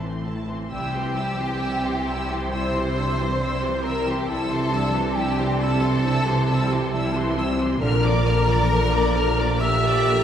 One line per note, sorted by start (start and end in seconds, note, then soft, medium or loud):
0.00 0.46 A1 medium
0.00 0.46 A2 medium
0.00 0.74 A2 soft
0.00 0.74 E3 soft
0.00 0.25 E3 soft
0.00 0.25 C4 medium
0.00 0.26 C4 soft
0.00 0.39 E4 soft
0.00 0.25 C6 soft
0.10 1.89 C4 soft
0.25 0.47 A3 soft
0.25 0.48 E4 soft
0.25 0.48 A5 soft
0.41 2.20 E4 soft
0.47 0.70 E3 soft
0.47 0.70 C4 soft
0.47 0.70 C6 soft
0.70 4.26 C2 medium
0.70 2.50 C3 medium
0.70 4.26 C3 medium
0.70 0.91 G3 medium
0.70 0.91 E4 medium
0.70 2.49 G4 medium
0.70 2.54 G5 medium
0.70 0.91 E6 soft
0.93 1.16 E3 soft
0.93 1.16 G4 soft
0.93 1.15 C6 medium
1.00 1.59 G3 soft
1.15 1.38 G3 soft
1.15 1.38 E4 soft
1.15 1.38 E6 soft
1.30 1.82 F3 soft
1.38 1.60 E3 soft
1.38 1.60 G4 soft
1.38 1.60 C6 medium
1.60 2.81 G3 soft
1.60 1.82 G3 medium
1.60 1.82 E4 medium
1.60 1.82 E6 soft
1.83 2.07 E3 soft
1.83 2.07 G4 soft
1.83 2.06 C6 soft
1.90 3.70 C4 soft
2.07 2.30 G3 medium
2.07 2.30 E4 medium
2.07 2.30 E6 medium
2.21 3.99 E4 medium
2.30 2.53 E3 soft
2.30 2.53 G4 medium
2.30 2.53 C6 soft
2.51 4.28 C3 medium
2.51 2.73 G3 medium
2.51 2.93 E4 medium
2.51 2.73 E4 medium
2.51 3.86 C5 medium
2.51 3.85 C6 medium
2.51 2.74 E6 medium
2.75 2.97 E3 medium
2.75 2.97 G4 medium
2.75 2.97 C6 soft
2.82 3.40 G3 soft
2.96 3.19 G3 medium
2.96 3.41 D4 medium
2.96 3.19 E4 medium
2.96 3.19 E6 soft
3.11 3.62 F3 soft
3.18 3.40 E3 medium
3.18 3.41 G4 soft
3.18 3.41 C6 medium
3.40 3.61 G3 medium
3.40 4.57 G3 medium
3.40 4.30 C4 medium
3.40 3.62 E4 medium
3.40 3.62 E6 medium
3.63 3.85 E3 medium
3.63 3.85 G4 medium
3.63 3.85 C6 medium
3.71 5.45 C4 soft
3.84 4.08 G3 medium
3.84 4.07 E4 medium
3.84 4.07 A#4 medium
3.84 4.08 A#5 medium
3.84 4.08 E6 medium
4.00 5.74 E4 medium
4.07 4.29 E3 medium
4.07 4.29 G4 soft
4.07 4.30 G4 medium
4.07 4.28 G5 medium
4.07 4.30 C6 medium
4.28 7.77 C2 medium
4.28 6.03 C3 medium
4.28 7.77 C3 medium
4.28 4.49 G3 medium
4.28 4.49 E4 medium
4.28 4.73 E4 medium
4.28 5.17 A4 medium
4.28 5.17 A5 medium
4.28 4.50 E6 medium
4.51 4.73 E3 medium
4.51 4.73 G4 medium
4.51 4.73 C6 medium
4.59 5.16 G3 medium
4.71 4.95 G3 medium
4.71 6.04 D4 medium
4.71 4.95 E4 medium
4.71 4.95 E6 medium
4.88 5.37 F3 medium
4.94 5.17 E3 medium
4.94 5.17 G4 medium
4.94 5.17 C6 medium
5.16 5.37 G3 medium
5.16 6.33 G3 medium
5.16 5.37 E4 medium
5.16 5.61 G4 medium
5.16 5.61 G5 medium
5.16 5.38 E6 medium
5.38 5.60 E3 medium
5.38 5.60 G4 medium
5.38 5.61 C6 medium
5.47 7.21 C4 medium
5.59 5.82 G3 medium
5.59 5.82 E4 medium
5.59 7.33 A4 loud
5.59 7.36 A5 medium
5.59 5.83 E6 medium
5.75 7.50 E4 medium
5.81 6.04 E3 medium
5.81 6.04 G4 medium
5.81 6.06 C6 medium
6.04 7.84 C3 medium
6.04 6.25 G3 medium
6.04 6.92 C4 medium
6.04 6.25 E4 medium
6.04 6.26 E6 medium
6.25 6.48 E3 medium
6.25 6.48 G4 medium
6.25 6.50 C6 medium
6.34 6.91 G3 medium
6.48 6.71 G3 medium
6.48 6.70 E4 medium
6.48 6.71 E6 medium
6.63 7.13 F3 medium
6.70 6.93 E3 medium
6.70 6.92 G4 medium
6.70 6.94 C6 medium
6.92 7.84 G3 medium
6.92 7.13 G3 medium
6.92 7.13 E4 medium
6.92 7.37 E4 medium
6.92 7.14 E6 medium
7.14 7.36 E3 medium
7.14 7.36 G4 medium
7.14 7.38 C6 medium
7.22 7.84 C4 medium
7.35 7.58 G3 medium
7.35 7.80 C4 medium
7.35 7.58 E4 medium
7.39 7.60 E6 medium
7.51 7.84 E4 medium
7.59 7.81 E3 medium
7.59 7.81 G4 medium
7.59 7.82 C6 medium
7.80 10.24 A#1 medium
7.80 9.60 A#2 medium
7.80 10.24 A#2 medium
7.80 8.01 D3 medium
7.80 8.23 D4 medium
7.80 9.57 A#4 loud
7.80 8.01 A#4 medium
7.80 9.62 A#5 loud
7.80 8.02 F6 medium
8.03 8.25 F3 medium
8.03 8.25 D5 medium
8.03 8.25 D6 medium
8.10 8.68 F3 medium
8.24 8.47 D3 medium
8.24 9.61 D4 medium
8.24 8.48 A#4 medium
8.24 8.47 F6 medium
8.40 8.90 E3 medium
8.47 8.70 F3 medium
8.47 8.69 D5 medium
8.47 8.70 D6 medium
8.69 8.90 D3 medium
8.69 9.91 F3 medium
8.69 8.90 A#4 medium
8.69 8.91 F6 medium
8.92 9.15 F3 medium
8.92 9.15 D5 medium
8.92 9.15 D6 medium
8.99 10.24 D4 medium
9.16 9.39 D3 medium
9.16 9.39 A#4 medium
9.16 9.39 F6 medium
9.39 9.62 F3 medium
9.39 9.62 D5 medium
9.39 9.62 D6 medium
9.61 10.24 A#2 medium
9.61 9.83 D3 medium
9.61 10.24 G4 medium
9.61 9.83 A#4 medium
9.61 10.24 E5 loud
9.61 10.24 E6 medium
9.61 9.83 F6 medium
9.85 10.08 F3 medium
9.85 10.08 D5 medium
9.85 10.08 D6 medium
9.92 10.24 F3 soft
10.08 10.24 D3 medium
10.08 10.24 A#4 medium
10.08 10.24 F6 medium